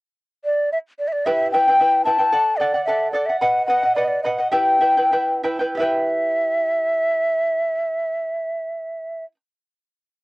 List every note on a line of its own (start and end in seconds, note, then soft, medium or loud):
0.44 0.70 D5 medium
0.72 0.78 E5 medium
0.99 1.09 D5 medium
1.08 1.14 E5 medium
1.12 1.27 D5 medium
1.25 1.53 E4 medium
1.25 1.53 G4 medium
1.25 1.53 B4 medium
1.25 1.51 E5 medium
1.25 1.52 E5 medium
1.25 1.53 G5 medium
1.51 1.67 E4 medium
1.51 1.67 B4 soft
1.51 1.67 E5 soft
1.51 2.02 G5 medium
1.51 1.67 G5 medium
1.68 1.79 E4 soft
1.68 1.80 B4 soft
1.68 1.80 G5 soft
1.80 2.05 E4 medium
1.80 2.05 B4 medium
1.80 2.04 E5 medium
1.80 2.06 G5 medium
2.05 2.18 E4 medium
2.05 2.18 B4 medium
2.05 2.19 E5 medium
2.05 2.17 G5 medium
2.05 2.58 A5 medium
2.18 2.33 E4 soft
2.18 2.32 B4 soft
2.18 2.33 G5 soft
2.32 2.59 A4 medium
2.32 2.60 D5 medium
2.32 2.60 F#5 medium
2.57 2.74 A4 medium
2.57 2.84 D5 medium
2.61 2.74 D5 medium
2.61 2.73 F#5 medium
2.74 2.87 D5 soft
2.74 2.88 F#5 soft
2.85 3.12 A4 medium
2.85 3.13 D5 medium
2.85 3.11 E5 medium
2.85 3.14 F#5 medium
3.12 3.27 A4 medium
3.12 3.27 D5 medium
3.12 3.28 D5 medium
3.12 3.28 F#5 medium
3.26 3.42 D5 soft
3.26 3.39 E5 medium
3.26 3.41 F#5 soft
3.40 3.67 B4 medium
3.40 3.68 D#5 medium
3.40 3.65 F#5 medium
3.40 3.69 F#5 medium
3.66 3.82 B4 medium
3.66 3.83 D#5 medium
3.66 3.93 F#5 medium
3.66 3.82 F#5 medium
3.83 3.97 D#5 soft
3.83 3.96 F#5 soft
3.95 4.23 B4 medium
3.95 4.06 D5 medium
3.95 4.24 D#5 soft
3.95 4.25 F#5 medium
4.05 4.22 D5 medium
4.05 4.08 D#5 medium
4.23 4.38 B4 soft
4.23 4.29 D#5 medium
4.23 4.38 D#5 medium
4.23 4.37 F#5 medium
4.37 4.52 D#5 soft
4.37 4.51 F#5 medium
4.37 4.51 F#5 soft
4.51 4.79 E4 medium
4.51 4.82 G4 medium
4.51 4.80 B4 medium
4.51 4.80 E5 medium
4.51 5.39 G5 medium
4.51 4.81 G5 medium
4.81 4.96 E4 medium
4.81 4.97 B4 medium
4.81 4.96 E5 medium
4.81 4.96 G5 medium
4.97 5.12 E4 soft
4.97 5.12 B4 soft
4.97 5.12 G5 soft
5.12 5.43 E4 soft
5.12 5.43 B4 soft
5.12 5.42 E5 soft
5.12 5.43 G5 medium
5.43 5.59 E4 medium
5.43 5.59 B4 medium
5.43 5.60 E5 medium
5.43 5.58 G5 medium
5.59 5.77 E4 soft
5.59 5.77 B4 soft
5.59 5.77 G5 soft
5.75 9.33 E4 medium
5.75 9.29 G4 medium
5.75 9.32 E5 medium
5.75 9.24 E5 medium
5.80 9.34 B4 medium
5.80 9.36 G5 medium